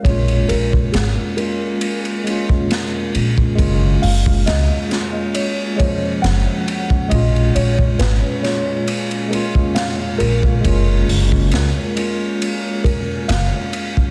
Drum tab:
RD |xxx-x-x-xxx-x-x-|x---x-x-x-x-x-x-|xxx-x-x-xxx-x-x-|x---x-x-x-x-x-x-|
HH |----------------|--o-------------|----------------|--o-------------|
SD |----o-------o---|----o-o-----o---|----o-o-----o---|----o-------o---|
BD |o--o-------o---o|o--o------o----o|o--o-------o---o|o--o------o----o|